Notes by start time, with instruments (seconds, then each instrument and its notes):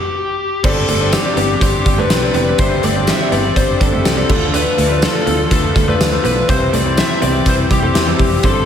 Already playing: lead electric guitar G4
0.63 fretless electric bass G1, grand piano G2 C4 D4 G4 C5 D5, analog synth pad D3 G3 C4 G4, overdriven electric guitar G3 D4 G4, clean electric guitar C4, lead electric guitar A4, kick, crash
0.88 fretless electric bass G1, clean electric guitar A3, overdriven electric guitar D4 G4, closed hi-hat
1.00 grand piano C4 D4 G4 C5 D5, muted clean electric guitar stroke
1.12 lead electric guitar G4, snare, closed hi-hat, tambourine
1.25 grand piano C4 D4 G4 C5 D5
1.37 fretless electric bass G1, clean electric guitar B3, closed hi-hat
1.61 fretless electric bass G1, overdriven electric guitar G3 D4, grand piano C4 D4 G4 C5 D5, lead electric guitar G4, muted clean electric guitar stroke, kick, closed hi-hat
1.65 overdriven electric guitar G4
1.86 fretless electric bass G1, clean electric guitar G3, kick, closed hi-hat
1.98 clean electric guitar A3, grand piano C4 D4 G4 C5 D5, lead electric guitar B4
2.10 fretless electric bass B1, snare, closed hi-hat, tambourine
2.22 grand piano C4 D4 G4 C5 D5
2.34 fretless electric bass F1, clean electric guitar B3, lead electric guitar B4, closed hi-hat
2.58 fretless electric bass G1, grand piano G2 C4 D4 G4 C5 E5, overdriven electric guitar G3 D4 G4, clean electric guitar C4, lead electric guitar C5, kick, closed hi-hat
2.83 fretless electric bass G1, clean electric guitar A3, overdriven electric guitar D4 G4, lead electric guitar D5, closed hi-hat
2.95 grand piano C4 D4 G4 C5 D5, muted clean electric guitar stroke
3.07 lead electric guitar E5, snare, closed hi-hat, tambourine
3.19 grand piano C4 D4 G4 C5 E5
3.32 fretless electric bass G1, clean electric guitar B3, lead electric guitar D5, closed hi-hat
3.56 fretless electric bass G1, overdriven electric guitar G3 D4 G4, grand piano C4 D4 G4 C5 D5, lead electric guitar C5, muted clean electric guitar stroke, kick, closed hi-hat
3.80 fretless electric bass G1, clean electric guitar G3, lead electric guitar A4, kick, closed hi-hat
3.92 clean electric guitar A3, grand piano C4 D4 G4 C5 E5
4.05 fretless electric bass C2, muted clean electric guitar stroke, snare, closed hi-hat, tambourine
4.17 clean electric guitar G3, grand piano C4 D4 G4 C5 D5
4.29 fretless electric bass D2, grand piano D3 A3 D4 F4 A4 D5, overdriven electric guitar D3 A3 D4, analog synth pad F3 A3 F4, clean electric guitar G3, kick, crash
4.54 clean electric guitar D4, lead electric guitar B4, closed hi-hat
4.78 fretless electric bass D2, clean electric guitar A3, overdriven electric guitar A3 D4, closed hi-hat
4.90 grand piano A3 D4 F4 A4 D5, muted clean electric guitar stroke
5.02 lead electric guitar A4, snare, closed hi-hat, tambourine
5.15 grand piano A3 D4 F4 A4 D5
5.27 fretless electric bass D2, clean electric guitar B3, closed hi-hat
5.50 fretless electric bass D2, overdriven electric guitar D3 A3, grand piano A3 D4 F4 A4 B4, lead electric guitar A4, muted clean electric guitar stroke, kick, closed hi-hat
5.54 overdriven electric guitar D4
5.76 fretless electric bass D2, clean electric guitar G3, kick, closed hi-hat
5.88 grand piano A3 D4 F4 A4 D5, clean electric guitar A3, lead electric guitar B4
6.00 fretless electric bass D2, snare, closed hi-hat, tambourine
6.12 grand piano A3 D4 F4 A4 C5
6.24 fretless electric bass B1, clean electric guitar B3, lead electric guitar B4, closed hi-hat
6.48 fretless electric bass C2, overdriven electric guitar C3 G3 C4, grand piano C3 G3 C4 E4 G4 C5, analog synth pad E3 G3 C4 G4, clean electric guitar C4, lead electric guitar C5, kick, closed hi-hat
6.73 fretless electric bass C2, overdriven electric guitar G3 C4, clean electric guitar A3, lead electric guitar D5, closed hi-hat
6.85 grand piano G3 C4 E4 G4 C5, muted clean electric guitar stroke
6.97 lead electric guitar E5, snare, closed hi-hat, tambourine
7.09 grand piano G3 C4 E4 G4 C5
7.22 fretless electric bass C2, clean electric guitar B3, lead electric guitar D5, closed hi-hat
7.45 fretless electric bass C2, overdriven electric guitar C3 G3, grand piano G3 C4 E4 G4 B4, lead electric guitar C5, muted clean electric guitar stroke, kick, closed hi-hat
7.50 overdriven electric guitar C4
7.71 fretless electric bass C2, clean electric guitar G3, lead electric guitar G4, kick, closed hi-hat
7.83 grand piano G3 C4 E4 G4 C5, clean electric guitar A3
7.95 fretless electric bass E2, muted clean electric guitar stroke, snare, closed hi-hat, tambourine
8.07 clean electric guitar G3, grand piano G3 C4 E4 G4 C5
8.19 fretless electric bass F1, clean electric guitar G3, kick, open hi-hat
8.43 fretless electric bass G1, grand piano G2 G3 C4 D4 G4 C5, analog synth pad D3 G4, overdriven electric guitar G3 D4 G4, clean electric guitar C4, lead electric guitar A4, kick, closed hi-hat